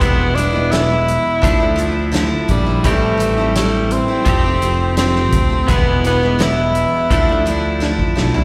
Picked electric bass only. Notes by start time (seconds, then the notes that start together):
0.01 E1
1.43 D2
2.50 A#1
2.85 A1
4.26 F1
5.33 D2
5.69 E1
7.11 D2
8.18 B1